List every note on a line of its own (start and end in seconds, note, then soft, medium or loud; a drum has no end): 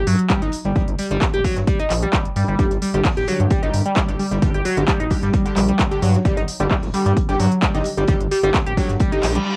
0.07 0.15 G2 medium
0.07 0.18 F#3 loud
0.07 closed hi-hat medium
0.07 open hi-hat loud
0.19 closed hi-hat medium
0.30 0.40 G3 medium
0.30 kick loud
0.30 snare loud
0.30 clap loud
0.30 closed hi-hat medium
0.42 0.49 G1 loud
0.42 0.46 D#4 medium
0.42 snare soft
0.42 closed hi-hat medium
0.52 closed hi-hat medium
0.52 open hi-hat loud
0.65 0.72 G1 medium
0.65 0.71 G3 medium
0.65 snare soft
0.65 closed hi-hat medium
0.75 0.83 G1 loud
0.75 0.80 G3 loud
0.75 kick loud
0.75 closed hi-hat medium
0.88 0.95 G1 medium
0.88 closed hi-hat soft
0.98 1.06 G3 medium
0.98 closed hi-hat medium
0.98 open hi-hat loud
1.10 1.18 G1 loud
1.10 1.17 G3 loud
1.10 snare soft
1.10 closed hi-hat medium
1.22 kick loud
1.22 snare loud
1.22 clap loud
1.22 closed hi-hat medium
1.34 1.40 D1 medium
1.34 1.40 G4 medium
1.34 closed hi-hat medium
1.44 1.55 F#3 loud
1.44 kick medium
1.44 snare soft
1.44 closed hi-hat medium
1.44 open hi-hat loud
1.56 1.63 G2 medium
1.56 snare medium
1.56 closed hi-hat medium
1.67 1.78 G3 medium
1.67 kick loud
1.67 closed hi-hat medium
1.79 1.83 D#4 medium
1.79 closed hi-hat medium
1.90 2.05 A#1 loud
1.90 clap medium
1.90 closed hi-hat medium
1.90 open hi-hat loud
2.02 2.09 G3 medium
2.02 closed hi-hat medium
2.13 2.17 G3 loud
2.13 kick loud
2.13 snare loud
2.13 clap loud
2.13 closed hi-hat medium
2.25 closed hi-hat soft
2.36 2.44 G2 medium
2.36 2.43 G3 medium
2.36 closed hi-hat medium
2.36 open hi-hat loud
2.47 2.55 G1 medium
2.47 2.54 G3 loud
2.47 snare soft
2.47 closed hi-hat medium
2.59 2.67 G1 loud
2.59 2.71 D3 medium
2.59 2.71 G3 medium
2.59 2.63 G3 loud
2.59 2.71 G4 medium
2.59 kick loud
2.59 closed hi-hat medium
2.71 2.78 G1 medium
2.71 closed hi-hat soft
2.82 2.89 G3 medium
2.82 closed hi-hat medium
2.82 open hi-hat loud
2.94 3.01 G1 loud
2.94 3.05 D3 medium
2.94 3.05 G3 medium
2.94 3.00 G3 loud
2.94 3.05 G4 medium
2.94 closed hi-hat medium
3.04 kick loud
3.04 snare loud
3.04 clap loud
3.04 closed hi-hat medium
3.04 open hi-hat medium
3.17 3.24 D1 medium
3.17 3.23 G4 medium
3.17 snare soft
3.17 closed hi-hat medium
3.27 3.47 D3 medium
3.27 3.38 F#3 loud
3.27 3.47 G3 medium
3.27 3.47 G4 medium
3.27 closed hi-hat medium
3.27 open hi-hat medium
3.40 3.47 G2 medium
3.40 closed hi-hat soft
3.50 3.61 G3 medium
3.50 kick loud
3.50 closed hi-hat medium
3.63 3.69 G1 loud
3.63 3.81 D3 medium
3.63 3.81 G3 medium
3.63 3.66 D#4 medium
3.63 3.81 G4 medium
3.63 closed hi-hat medium
3.73 3.81 G2 medium
3.73 closed hi-hat medium
3.73 open hi-hat loud
3.85 3.92 G3 medium
3.85 closed hi-hat medium
3.96 4.01 G3 loud
3.96 kick loud
3.96 snare loud
3.96 clap loud
3.96 closed hi-hat medium
4.08 4.15 G1 loud
4.08 4.20 D3 medium
4.08 4.20 G3 medium
4.08 4.20 G4 medium
4.08 snare soft
4.08 closed hi-hat soft
4.19 4.26 G3 medium
4.19 closed hi-hat medium
4.19 open hi-hat medium
4.31 4.38 G1 medium
4.31 4.38 G3 loud
4.31 snare medium
4.31 closed hi-hat soft
4.42 4.50 G1 medium
4.42 4.54 D3 medium
4.42 4.54 G3 medium
4.42 4.54 G4 medium
4.42 kick loud
4.42 closed hi-hat medium
4.54 4.61 G1 medium
4.54 4.60 G4 medium
4.54 closed hi-hat medium
4.65 4.76 F#3 loud
4.65 closed hi-hat medium
4.65 open hi-hat loud
4.76 4.84 G1 loud
4.76 4.88 D3 medium
4.76 4.88 G3 medium
4.76 4.88 G4 medium
4.76 snare soft
4.76 closed hi-hat medium
4.88 4.98 G3 medium
4.88 kick loud
4.88 snare loud
4.88 clap loud
4.88 closed hi-hat medium
5.00 5.07 D1 medium
5.00 5.04 D#4 medium
5.00 closed hi-hat soft
5.10 5.30 D3 medium
5.10 5.30 G3 medium
5.10 5.30 G4 medium
5.10 kick medium
5.10 snare soft
5.10 closed hi-hat medium
5.10 open hi-hat medium
5.23 5.30 G2 medium
5.23 5.29 G3 medium
5.23 snare soft
5.23 closed hi-hat soft
5.33 5.38 G3 loud
5.33 kick loud
5.33 closed hi-hat medium
5.46 5.64 D3 medium
5.46 5.64 G3 medium
5.46 5.64 G4 loud
5.46 closed hi-hat medium
5.57 5.72 A#1 loud
5.57 5.64 G3 medium
5.57 clap medium
5.57 closed hi-hat medium
5.57 open hi-hat loud
5.69 5.75 G3 loud
5.69 closed hi-hat soft
5.79 kick loud
5.79 snare loud
5.79 clap loud
5.79 closed hi-hat medium
5.92 6.03 D3 medium
5.92 6.03 G3 medium
5.92 6.03 G4 medium
5.92 5.98 G4 medium
5.92 closed hi-hat soft
6.02 6.17 G2 medium
6.02 6.13 F#3 loud
6.02 closed hi-hat medium
6.02 open hi-hat medium
6.14 snare soft
6.14 closed hi-hat soft
6.25 6.33 G1 loud
6.25 6.38 D3 medium
6.25 6.36 G3 medium
6.25 6.38 G3 medium
6.25 6.38 G4 medium
6.25 kick loud
6.25 closed hi-hat medium
6.37 6.44 G1 medium
6.37 6.41 D#4 medium
6.37 closed hi-hat soft
6.37 closed hi-hat medium
6.48 closed hi-hat medium
6.48 open hi-hat loud
6.60 6.67 G1 loud
6.60 6.71 D3 medium
6.60 6.67 G3 medium
6.60 6.71 G3 medium
6.60 6.71 G4 medium
6.60 closed hi-hat medium
6.71 6.75 G3 loud
6.71 kick loud
6.71 snare loud
6.71 clap loud
6.71 closed hi-hat medium
6.71 open hi-hat medium
6.83 6.90 D1 medium
6.83 snare soft
6.83 closed hi-hat medium
6.94 7.13 D3 medium
6.94 7.13 G3 medium
6.94 7.01 G3 medium
6.94 7.13 G4 medium
6.94 closed hi-hat medium
6.94 open hi-hat medium
7.06 7.13 G2 medium
7.06 7.12 G3 loud
7.06 closed hi-hat medium
7.06 closed hi-hat soft
7.17 kick loud
7.17 closed hi-hat medium
7.29 7.36 G1 medium
7.29 7.48 D3 medium
7.29 7.48 G3 medium
7.29 7.48 G4 medium
7.29 7.35 G4 medium
7.29 closed hi-hat medium
7.40 7.47 G2 medium
7.40 7.50 F#3 loud
7.40 closed hi-hat medium
7.40 open hi-hat loud
7.52 closed hi-hat medium
7.62 7.73 G3 medium
7.62 kick loud
7.62 snare loud
7.62 clap loud
7.62 closed hi-hat medium
7.75 7.82 G1 loud
7.75 7.86 D3 medium
7.75 7.86 G3 medium
7.75 7.79 D#4 medium
7.75 7.86 G4 medium
7.75 snare soft
7.75 closed hi-hat soft
7.84 closed hi-hat medium
7.84 open hi-hat medium
7.98 8.05 G1 medium
7.98 8.04 G3 medium
7.98 snare medium
7.98 closed hi-hat medium
8.08 8.16 G1 loud
8.08 8.21 D3 medium
8.08 8.21 G3 medium
8.08 8.13 G3 loud
8.08 8.21 G4 medium
8.08 kick loud
8.08 closed hi-hat loud
8.21 8.27 G1 medium
8.21 closed hi-hat medium
8.31 8.38 G3 medium
8.31 closed hi-hat medium
8.31 open hi-hat loud
8.43 8.50 G1 loud
8.43 8.55 D3 medium
8.43 8.55 G3 medium
8.43 8.50 G3 loud
8.43 8.55 G4 medium
8.43 snare soft
8.43 closed hi-hat medium
8.54 kick loud
8.54 snare loud
8.54 clap loud
8.54 closed hi-hat medium
8.54 closed hi-hat loud
8.66 8.73 D1 medium
8.66 8.73 G4 medium
8.66 closed hi-hat medium
8.77 8.96 D3 medium
8.77 8.88 F#3 loud
8.77 8.96 G3 medium
8.77 8.96 G4 medium
8.77 kick medium
8.77 snare soft
8.77 closed hi-hat medium
8.77 open hi-hat medium
8.89 8.96 G2 medium
8.89 snare soft
8.89 closed hi-hat medium
9.00 9.11 G3 medium
9.00 kick loud
9.00 closed hi-hat medium
9.00 closed hi-hat loud
9.00 reverse cymbal medium
9.12 9.31 D3 medium
9.12 9.31 G3 medium
9.12 9.16 D#4 medium
9.12 9.31 G4 medium
9.12 closed hi-hat medium
9.23 9.38 A#1 loud
9.23 clap medium
9.23 closed hi-hat medium
9.23 open hi-hat loud
9.35 9.41 G3 medium
9.35 closed hi-hat medium
9.46 9.50 G3 loud